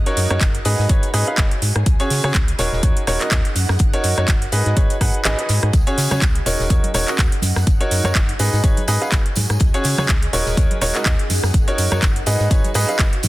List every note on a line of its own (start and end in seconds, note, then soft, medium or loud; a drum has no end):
0.00 1.14 F#4 medium
0.00 1.14 C#5 medium
0.06 0.27 D#4 loud
0.06 0.27 F#4 medium
0.06 0.27 A#4 medium
0.06 0.27 C#5 loud
0.06 closed hi-hat medium
0.17 0.27 F#2 medium
0.17 closed hi-hat medium
0.17 open hi-hat loud
0.30 0.38 F#2 medium
0.30 0.40 D#4 medium
0.30 0.40 F#4 medium
0.30 0.40 A#4 medium
0.30 0.40 C#5 loud
0.30 cross-stick medium
0.30 closed hi-hat soft
0.41 0.60 F#1 loud
0.41 kick loud
0.41 snare loud
0.41 clap loud
0.41 closed hi-hat medium
0.55 closed hi-hat medium
0.65 0.75 G#2 loud
0.65 0.87 D#4 medium
0.65 0.87 G#4 medium
0.65 2.99 G#4 medium
0.65 0.87 B4 medium
0.65 0.87 D#5 loud
0.65 closed hi-hat medium
0.65 open hi-hat medium
0.79 0.87 G#2 medium
0.79 snare soft
0.89 1.00 G#1 loud
0.89 1.07 D#4 medium
0.89 1.07 G#4 medium
0.89 1.07 B4 medium
0.89 1.07 C#5 medium
0.89 kick loud
0.89 closed hi-hat loud
0.89 closed hi-hat medium
1.02 2.99 D#5 medium
1.02 closed hi-hat soft
1.02 closed hi-hat medium
1.14 1.24 G#2 loud
1.14 1.25 D#4 medium
1.14 1.25 G#4 medium
1.14 1.25 B4 medium
1.14 1.25 D#5 loud
1.14 cross-stick medium
1.14 closed hi-hat medium
1.14 open hi-hat loud
1.27 1.43 D#4 medium
1.27 1.43 G#4 medium
1.27 1.43 B4 medium
1.27 1.43 F5 medium
1.27 closed hi-hat soft
1.38 1.48 G#1 loud
1.38 kick loud
1.38 snare loud
1.38 clap loud
1.38 closed hi-hat medium
1.51 closed hi-hat medium
1.62 1.72 G#2 medium
1.62 closed hi-hat medium
1.62 open hi-hat medium
1.76 1.84 G#2 medium
1.76 cross-stick medium
1.76 closed hi-hat soft
1.86 1.96 C#2 loud
1.86 2.99 C#4 medium
1.86 kick loud
1.86 closed hi-hat medium
2.00 2.21 C#4 loud
2.00 2.21 F#4 medium
2.00 2.21 G#4 medium
2.00 2.21 C#5 loud
2.00 closed hi-hat soft
2.00 closed hi-hat medium
2.10 2.21 C#3 medium
2.10 3.96 F#5 loud
2.10 snare medium
2.10 open hi-hat loud
2.10 open hi-hat medium
2.24 2.32 C#3 medium
2.24 2.33 C#4 medium
2.24 2.33 F#4 medium
2.24 2.33 G#4 medium
2.24 2.33 C#5 loud
2.24 cross-stick medium
2.24 closed hi-hat soft
2.34 2.53 C#2 loud
2.34 kick loud
2.34 snare loud
2.34 clap loud
2.34 closed hi-hat medium
2.48 closed hi-hat medium
2.59 2.69 D#1 loud
2.59 2.81 D#4 medium
2.59 3.96 D#4 medium
2.59 2.81 F#4 medium
2.59 2.81 A#4 medium
2.59 2.81 C#5 loud
2.59 snare loud
2.59 closed hi-hat medium
2.59 open hi-hat medium
2.73 2.80 D#1 loud
2.73 snare soft
2.83 2.93 D#2 loud
2.83 3.01 D#4 medium
2.83 3.01 F#4 medium
2.83 3.01 A#4 medium
2.83 3.01 C#5 medium
2.83 kick loud
2.83 closed hi-hat medium
2.89 3.96 A#4 medium
2.97 closed hi-hat medium
3.07 3.17 D#1 loud
3.07 3.19 D#4 medium
3.07 3.19 F#4 medium
3.07 3.19 A#4 medium
3.07 3.19 C#5 loud
3.07 cross-stick medium
3.07 snare soft
3.07 closed hi-hat medium
3.07 open hi-hat loud
3.21 3.36 D#4 medium
3.21 3.36 F#4 medium
3.21 3.36 A#4 medium
3.21 3.36 D#5 medium
3.21 clap soft
3.21 closed hi-hat soft
3.31 3.41 D#2 loud
3.31 kick loud
3.31 snare loud
3.31 clap loud
3.31 closed hi-hat medium
3.45 closed hi-hat medium
3.56 3.66 F#2 medium
3.56 5.01 F#4 loud
3.56 closed hi-hat medium
3.56 open hi-hat medium
3.69 3.77 F#2 medium
3.69 cross-stick medium
3.69 snare soft
3.79 3.90 F#1 loud
3.79 kick loud
3.79 closed hi-hat medium
3.87 5.01 C#5 medium
3.93 4.14 D#4 loud
3.93 4.14 F#4 medium
3.93 4.14 A#4 medium
3.93 4.14 C#5 loud
3.93 closed hi-hat medium
4.04 4.14 F#2 medium
4.04 closed hi-hat medium
4.04 open hi-hat loud
4.18 4.26 F#2 medium
4.18 4.27 D#4 medium
4.18 4.27 F#4 medium
4.18 4.27 A#4 medium
4.18 4.27 C#5 loud
4.18 cross-stick medium
4.18 closed hi-hat soft
4.28 4.47 F#1 loud
4.28 kick loud
4.28 snare loud
4.28 clap loud
4.28 closed hi-hat medium
4.42 closed hi-hat medium
4.52 4.63 G#2 medium
4.52 4.74 D#4 medium
4.52 4.74 G#4 medium
4.52 6.86 G#4 medium
4.52 4.74 B4 medium
4.52 4.74 D#5 loud
4.52 closed hi-hat medium
4.52 open hi-hat medium
4.64 4.74 G#2 loud
4.64 6.86 D#5 medium
4.64 snare soft
4.64 closed hi-hat soft
4.77 4.87 G#1 loud
4.77 4.94 D#4 medium
4.77 4.94 G#4 medium
4.77 4.94 B4 medium
4.77 4.94 C#5 medium
4.77 kick loud
4.77 closed hi-hat medium
4.90 closed hi-hat medium
4.90 closed hi-hat soft
5.01 5.11 G#2 loud
5.01 5.18 D#4 medium
5.01 5.18 G#4 medium
5.01 5.18 B4 medium
5.01 5.18 F#5 medium
5.01 6.03 B5 medium
5.01 kick medium
5.01 cross-stick medium
5.01 closed hi-hat medium
5.01 open hi-hat loud
5.14 closed hi-hat soft
5.25 5.35 G#1 loud
5.25 5.37 D#4 loud
5.25 5.37 G#4 medium
5.25 5.37 B4 medium
5.25 5.37 D#5 loud
5.25 snare loud
5.25 clap loud
5.25 closed hi-hat medium
5.39 5.72 D#4 medium
5.39 5.72 G#4 medium
5.39 5.72 B4 medium
5.39 5.72 D#5 medium
5.39 closed hi-hat medium
5.49 5.59 G#2 loud
5.49 snare loud
5.49 closed hi-hat medium
5.49 open hi-hat medium
5.63 5.71 G#2 loud
5.63 cross-stick medium
5.63 closed hi-hat soft
5.73 5.83 C#2 loud
5.73 6.86 C#4 medium
5.73 kick loud
5.73 closed hi-hat medium
5.73 tambourine soft
5.87 6.08 C#4 loud
5.87 6.08 F#4 medium
5.87 6.08 G#4 medium
5.87 6.08 C#5 loud
5.87 closed hi-hat soft
5.87 closed hi-hat medium
5.98 6.08 C#3 medium
5.98 snare soft
5.98 open hi-hat loud
5.98 open hi-hat medium
5.98 tambourine medium
6.04 7.83 F#5 medium
6.11 6.19 C#3 medium
6.11 6.20 C#4 medium
6.11 6.20 F#4 medium
6.11 6.20 G#4 medium
6.11 6.20 C#5 loud
6.11 cross-stick medium
6.11 tambourine medium
6.11 high conga loud
6.21 6.40 C#2 loud
6.21 kick loud
6.21 snare loud
6.21 clap loud
6.21 closed hi-hat medium
6.35 closed hi-hat medium
6.46 6.56 D#1 loud
6.46 7.83 D#4 medium
6.46 6.68 D#4 medium
6.46 6.68 F#4 medium
6.46 6.68 A#4 medium
6.46 6.68 C#5 medium
6.46 closed hi-hat medium
6.46 open hi-hat medium
6.46 tambourine loud
6.60 6.67 D#1 loud
6.60 snare medium
6.60 tambourine soft
6.70 6.80 D#2 loud
6.70 6.88 D#4 medium
6.70 6.88 F#4 medium
6.70 6.88 A#4 medium
6.70 6.88 C#5 medium
6.70 kick loud
6.70 closed hi-hat medium
6.79 7.83 A#4 medium
6.84 closed hi-hat medium
6.84 high conga medium
6.94 7.04 D#1 loud
6.94 7.06 D#4 medium
6.94 7.06 F#4 medium
6.94 7.06 A#4 medium
6.94 7.06 C#5 loud
6.94 cross-stick medium
6.94 snare soft
6.94 closed hi-hat medium
6.94 open hi-hat loud
6.94 tambourine loud
7.08 7.23 D#4 medium
7.08 7.23 F#4 medium
7.08 7.24 A#4 medium
7.08 7.24 D#5 medium
7.08 clap soft
7.08 closed hi-hat soft
7.08 tambourine medium
7.19 7.29 D#2 loud
7.19 kick loud
7.19 snare loud
7.19 clap loud
7.19 closed hi-hat medium
7.19 tambourine soft
7.32 closed hi-hat medium
7.42 7.53 F#2 medium
7.42 8.88 F#4 medium
7.42 closed hi-hat medium
7.42 open hi-hat loud
7.42 tambourine medium
7.42 high conga loud
7.56 7.64 F#2 medium
7.56 cross-stick medium
7.56 snare soft
7.56 tambourine medium
7.64 7.77 F#1 loud
7.64 8.88 G#5 medium
7.64 kick loud
7.64 closed hi-hat medium
7.64 tambourine soft
7.80 8.01 D#4 loud
7.80 8.01 F#4 medium
7.80 8.01 A#4 medium
7.80 8.88 C#5 medium
7.80 8.01 C#5 loud
7.80 closed hi-hat medium
7.91 8.01 F#2 medium
7.91 closed hi-hat medium
7.91 open hi-hat loud
7.91 tambourine medium
8.04 8.13 F#2 medium
8.04 8.14 D#4 medium
8.04 8.14 F#4 medium
8.04 8.14 A#4 medium
8.04 8.14 C#5 loud
8.04 cross-stick medium
8.04 closed hi-hat soft
8.04 tambourine medium
8.04 high conga loud
8.15 8.34 F#1 loud
8.15 kick loud
8.15 snare loud
8.15 clap loud
8.15 closed hi-hat medium
8.15 tambourine soft
8.29 closed hi-hat medium
8.39 8.50 G#2 loud
8.39 8.61 D#4 medium
8.39 8.61 G#4 medium
8.39 10.73 G#4 medium
8.39 8.61 B4 medium
8.39 8.61 D#5 loud
8.39 closed hi-hat medium
8.39 open hi-hat medium
8.39 tambourine loud
8.50 8.61 G#2 loud
8.50 10.73 D#5 medium
8.50 snare soft
8.50 tambourine medium
8.64 8.74 G#1 loud
8.64 8.81 D#4 medium
8.64 8.81 G#4 medium
8.64 8.81 B4 medium
8.64 8.81 C#5 medium
8.64 kick loud
8.64 closed hi-hat medium
8.64 tambourine soft
8.77 closed hi-hat soft
8.77 closed hi-hat medium
8.77 high conga medium
8.88 8.98 G#2 loud
8.88 9.00 D#4 medium
8.88 9.00 G#4 medium
8.88 9.00 B4 medium
8.88 9.00 D#5 loud
8.88 cross-stick medium
8.88 closed hi-hat medium
8.88 open hi-hat loud
8.88 tambourine loud
9.01 9.17 D#4 medium
9.01 9.17 G#4 medium
9.01 9.17 B4 medium
9.01 9.17 F5 medium
9.01 closed hi-hat soft
9.01 tambourine soft
9.12 9.22 G#1 loud
9.12 kick loud
9.12 snare loud
9.12 clap loud
9.12 closed hi-hat medium
9.26 closed hi-hat medium
9.35 9.46 G#2 medium
9.35 closed hi-hat medium
9.35 open hi-hat loud
9.35 tambourine medium
9.35 high conga loud
9.50 9.58 G#2 medium
9.50 cross-stick medium
9.50 closed hi-hat soft
9.50 tambourine medium
9.60 9.71 C#2 loud
9.60 10.73 C#4 medium
9.60 kick loud
9.60 closed hi-hat medium
9.74 9.95 C#4 loud
9.74 9.95 F#4 medium
9.74 9.95 G#4 medium
9.74 9.95 C#5 loud
9.74 closed hi-hat soft
9.84 9.95 C#3 medium
9.84 snare medium
9.84 open hi-hat medium
9.84 open hi-hat loud
9.84 tambourine medium
9.94 11.70 F#5 medium
9.94 high conga loud
9.98 10.06 C#3 medium
9.98 10.07 C#4 medium
9.98 10.07 F#4 medium
9.98 10.07 G#4 medium
9.98 10.07 C#5 loud
9.98 cross-stick medium
9.98 closed hi-hat soft
9.98 tambourine medium
10.09 10.28 C#2 loud
10.09 kick loud
10.09 snare loud
10.09 clap loud
10.09 closed hi-hat medium
10.23 closed hi-hat medium
10.33 10.43 D#1 medium
10.33 11.70 D#4 medium
10.33 10.55 D#4 medium
10.33 10.55 F#4 medium
10.33 10.55 A#4 medium
10.33 10.55 C#5 loud
10.33 closed hi-hat medium
10.33 open hi-hat loud
10.33 tambourine loud
10.46 10.54 D#1 medium
10.46 snare soft
10.46 tambourine medium
10.57 10.67 D#2 loud
10.57 10.75 D#4 medium
10.57 10.75 F#4 medium
10.57 10.75 A#4 medium
10.57 10.75 C#5 medium
10.57 kick loud
10.57 closed hi-hat medium
10.57 tambourine soft
10.71 closed hi-hat medium
10.71 high conga medium
10.80 10.92 D#1 loud
10.80 10.93 D#4 loud
10.80 10.93 F#4 medium
10.80 10.93 A#4 medium
10.80 10.93 C#5 loud
10.80 cross-stick medium
10.80 snare soft
10.80 closed hi-hat medium
10.80 open hi-hat loud
10.80 tambourine medium
10.95 11.11 D#4 medium
10.95 11.11 F#4 medium
10.95 11.11 A#4 medium
10.95 11.11 D#5 medium
10.95 clap soft
10.95 closed hi-hat soft
10.95 tambourine medium
11.05 11.16 D#2 loud
11.05 kick loud
11.05 snare loud
11.05 clap loud
11.05 closed hi-hat medium
11.19 closed hi-hat soft
11.30 11.40 F#2 medium
11.30 12.75 F#4 medium
11.30 snare soft
11.30 open hi-hat loud
11.30 open hi-hat medium
11.30 tambourine medium
11.30 high conga medium
11.43 11.51 F#2 medium
11.43 12.75 C#5 medium
11.43 cross-stick medium
11.43 tambourine medium
11.54 11.64 F#1 loud
11.54 kick loud
11.54 closed hi-hat medium
11.54 tambourine soft
11.68 11.89 D#4 loud
11.68 11.89 F#4 medium
11.68 11.89 A#4 medium
11.68 11.89 C#5 loud
11.68 closed hi-hat soft
11.74 12.75 G#5 medium
11.78 11.88 F#2 loud
11.78 closed hi-hat medium
11.78 open hi-hat loud
11.78 tambourine medium
11.91 12.00 F#2 medium
11.91 12.01 D#4 medium
11.91 12.01 F#4 medium
11.91 12.01 A#4 medium
11.91 12.01 C#5 loud
11.91 cross-stick medium
11.91 tambourine medium
11.91 high conga loud
12.02 12.21 F#1 loud
12.02 kick loud
12.02 snare loud
12.02 clap loud
12.02 closed hi-hat medium
12.02 tambourine soft
12.16 closed hi-hat medium
12.26 12.37 G#2 loud
12.26 12.48 D#4 medium
12.26 13.28 G#4 medium
12.26 12.48 G#4 medium
12.26 12.48 B4 medium
12.26 12.48 D#5 loud
12.26 closed hi-hat medium
12.26 open hi-hat loud
12.26 tambourine loud
12.40 12.48 G#2 medium
12.40 snare soft
12.40 tambourine medium
12.51 12.61 G#1 loud
12.51 12.68 D#4 medium
12.51 12.68 G#4 medium
12.51 12.68 B4 medium
12.51 12.68 C#5 medium
12.51 kick loud
12.51 closed hi-hat medium
12.51 closed hi-hat loud
12.51 tambourine soft
12.64 closed hi-hat medium
12.64 closed hi-hat soft
12.64 high conga medium
12.74 12.85 G#2 loud
12.74 12.87 D#4 medium
12.74 12.87 G#4 medium
12.74 12.87 B4 medium
12.74 12.87 D#5 loud
12.74 13.28 D#5 medium
12.74 13.28 B5 medium
12.74 cross-stick medium
12.74 closed hi-hat medium
12.74 open hi-hat loud
12.74 tambourine loud
12.89 13.04 D#4 medium
12.89 13.04 G#4 medium
12.89 13.04 B4 medium
12.89 13.04 F5 medium
12.89 closed hi-hat soft
12.89 tambourine medium
12.99 13.09 G#1 loud
12.99 kick loud
12.99 snare loud
12.99 clap loud
12.99 closed hi-hat medium
13.13 closed hi-hat soft
13.23 13.28 G#2 loud
13.23 closed hi-hat medium
13.23 open hi-hat loud
13.23 tambourine loud
13.23 high conga loud